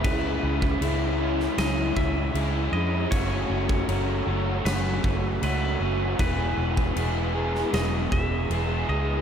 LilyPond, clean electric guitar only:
\new Staff \with { instrumentName = "Clean electric guitar" } { \time 4/4 \key e \major \tempo 4 = 78 b'2 dis''8 e''4 dis''8 | cis''2 b'4 b'4 | b'2 dis''8 e''4 dis''8 | }